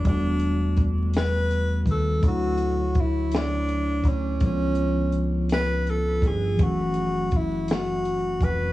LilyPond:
<<
  \new Staff \with { instrumentName = "Tenor saxophone" } { \time 6/8 \key e \dorian \tempo 4. = 55 d'4 r8 b'4 a'8 | fis'4 e'8 d'4 cis'8 | cis'4 r8 b'8 a'8 gis'8 | fis'4 e'8 fis'4 b'8 | }
  \new Staff \with { instrumentName = "Tine electric piano" } { \time 6/8 \key e \dorian <d g a b fis'>2. | <d fis a e' cis''>2. | <d eis b cis' eis'>2. | <e fis a cis' fis'>2. | }
  \new Staff \with { instrumentName = "Fingered electric bass" } { \clef bass \time 6/8 \key e \dorian e,,2~ e,,8 dis,8 | d,2~ d,8 d,8 | cis,2~ cis,8 g,,8 | fis,,2~ fis,,8 f,,8 | }
  \new DrumStaff \with { instrumentName = "Drums" } \drummode { \time 6/8 <hh bd>8 hh8 <hh bd>8 <hh sn>8 hh8 <hh bd>8 | <hh bd>8 hh8 <hh bd>8 <hh sn>8 hh8 <hh bd>8 | <hh bd>8 hh8 hh8 <hh sn>8 hh8 <hh bd>8 | <hh bd>8 hh8 <hh bd>8 <hh sn>8 hh8 <hh bd>8 | }
>>